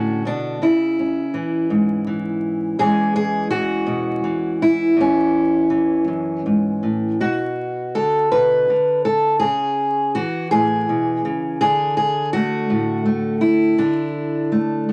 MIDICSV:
0, 0, Header, 1, 2, 480
1, 0, Start_track
1, 0, Tempo, 724638
1, 413, Time_signature, 6, 3, 24, 8
1, 2808, Tempo, 740741
1, 6168, Tempo, 727273
1, 9798, End_track
2, 0, Start_track
2, 0, Title_t, "Steel-string acoustic guitar"
2, 0, Program_c, 0, 25
2, 0, Note_on_c, 0, 45, 57
2, 0, Note_on_c, 0, 50, 57
2, 0, Note_on_c, 0, 61, 78
2, 0, Note_on_c, 0, 66, 86
2, 165, Note_off_c, 0, 45, 0
2, 167, Note_on_c, 0, 47, 56
2, 175, Note_off_c, 0, 61, 0
2, 178, Note_on_c, 0, 62, 86
2, 406, Note_off_c, 0, 47, 0
2, 409, Note_on_c, 0, 49, 68
2, 414, Note_off_c, 0, 66, 0
2, 415, Note_off_c, 0, 50, 0
2, 416, Note_off_c, 0, 62, 0
2, 416, Note_on_c, 0, 64, 77
2, 657, Note_on_c, 0, 61, 45
2, 886, Note_on_c, 0, 52, 60
2, 892, Note_off_c, 0, 49, 0
2, 1128, Note_on_c, 0, 44, 62
2, 1368, Note_off_c, 0, 52, 0
2, 1370, Note_on_c, 0, 52, 60
2, 1821, Note_off_c, 0, 44, 0
2, 1846, Note_on_c, 0, 40, 77
2, 1847, Note_off_c, 0, 64, 0
2, 1848, Note_off_c, 0, 52, 0
2, 1850, Note_on_c, 0, 68, 112
2, 1851, Note_on_c, 0, 52, 51
2, 1856, Note_on_c, 0, 56, 50
2, 1860, Note_off_c, 0, 61, 0
2, 1862, Note_on_c, 0, 61, 51
2, 2083, Note_off_c, 0, 68, 0
2, 2091, Note_on_c, 0, 68, 108
2, 2318, Note_off_c, 0, 52, 0
2, 2320, Note_off_c, 0, 68, 0
2, 2321, Note_on_c, 0, 52, 64
2, 2322, Note_on_c, 0, 66, 100
2, 2561, Note_on_c, 0, 47, 66
2, 2799, Note_off_c, 0, 52, 0
2, 2805, Note_off_c, 0, 47, 0
2, 2807, Note_on_c, 0, 52, 58
2, 3041, Note_off_c, 0, 66, 0
2, 3056, Note_on_c, 0, 64, 90
2, 3253, Note_off_c, 0, 52, 0
2, 3257, Note_off_c, 0, 56, 0
2, 3260, Note_off_c, 0, 61, 0
2, 3271, Note_off_c, 0, 40, 0
2, 3278, Note_on_c, 0, 40, 70
2, 3305, Note_on_c, 0, 61, 81
2, 3755, Note_on_c, 0, 52, 61
2, 3769, Note_off_c, 0, 64, 0
2, 3996, Note_off_c, 0, 40, 0
2, 3999, Note_on_c, 0, 42, 55
2, 4243, Note_off_c, 0, 42, 0
2, 4246, Note_on_c, 0, 44, 57
2, 4486, Note_on_c, 0, 45, 52
2, 4489, Note_off_c, 0, 44, 0
2, 4700, Note_off_c, 0, 52, 0
2, 4730, Note_off_c, 0, 61, 0
2, 4730, Note_on_c, 0, 47, 68
2, 4731, Note_off_c, 0, 45, 0
2, 4733, Note_on_c, 0, 66, 93
2, 5212, Note_on_c, 0, 69, 89
2, 5216, Note_off_c, 0, 47, 0
2, 5216, Note_on_c, 0, 50, 59
2, 5447, Note_off_c, 0, 69, 0
2, 5449, Note_on_c, 0, 71, 105
2, 5457, Note_on_c, 0, 47, 59
2, 5689, Note_off_c, 0, 50, 0
2, 5694, Note_off_c, 0, 66, 0
2, 5695, Note_off_c, 0, 47, 0
2, 5697, Note_on_c, 0, 50, 57
2, 5923, Note_off_c, 0, 71, 0
2, 5926, Note_on_c, 0, 69, 102
2, 6147, Note_off_c, 0, 69, 0
2, 6149, Note_on_c, 0, 68, 102
2, 6167, Note_on_c, 0, 49, 70
2, 6172, Note_off_c, 0, 50, 0
2, 6643, Note_off_c, 0, 68, 0
2, 6645, Note_on_c, 0, 66, 91
2, 6651, Note_on_c, 0, 52, 63
2, 6653, Note_off_c, 0, 49, 0
2, 6882, Note_off_c, 0, 66, 0
2, 6884, Note_on_c, 0, 68, 102
2, 6893, Note_on_c, 0, 45, 65
2, 7134, Note_off_c, 0, 45, 0
2, 7137, Note_on_c, 0, 47, 62
2, 7370, Note_off_c, 0, 47, 0
2, 7373, Note_on_c, 0, 49, 64
2, 7601, Note_off_c, 0, 68, 0
2, 7609, Note_on_c, 0, 68, 108
2, 7610, Note_off_c, 0, 52, 0
2, 7612, Note_off_c, 0, 49, 0
2, 7613, Note_on_c, 0, 50, 79
2, 7839, Note_off_c, 0, 68, 0
2, 7847, Note_on_c, 0, 68, 92
2, 8083, Note_off_c, 0, 68, 0
2, 8085, Note_on_c, 0, 66, 96
2, 8098, Note_on_c, 0, 57, 64
2, 8330, Note_on_c, 0, 45, 68
2, 8557, Note_off_c, 0, 57, 0
2, 8565, Note_on_c, 0, 57, 63
2, 8796, Note_off_c, 0, 66, 0
2, 8798, Note_on_c, 0, 64, 92
2, 9015, Note_off_c, 0, 57, 0
2, 9040, Note_off_c, 0, 50, 0
2, 9045, Note_on_c, 0, 62, 81
2, 9046, Note_off_c, 0, 45, 0
2, 9048, Note_on_c, 0, 50, 74
2, 9524, Note_off_c, 0, 64, 0
2, 9530, Note_on_c, 0, 57, 60
2, 9774, Note_on_c, 0, 45, 61
2, 9798, Note_off_c, 0, 45, 0
2, 9798, Note_off_c, 0, 50, 0
2, 9798, Note_off_c, 0, 57, 0
2, 9798, Note_off_c, 0, 62, 0
2, 9798, End_track
0, 0, End_of_file